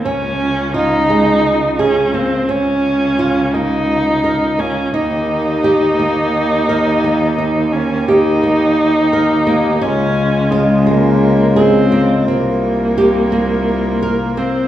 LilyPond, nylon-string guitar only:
\new Staff \with { instrumentName = "Nylon-string guitar" } { \time 7/8 \key des \lydian \tempo 4 = 86 des'4 f'8 aes4 aes'8 bes8 | des'4 f'8 bes4 bes'8 bes8 | ees'4 g'8 bes4 bes'8 bes8 | ees'4 g'8 bes4 bes'8 bes8 |
des'4 f'8 aes4 aes'8 bes8 | c'4 g'8 bes4 bes'8 bes8 | }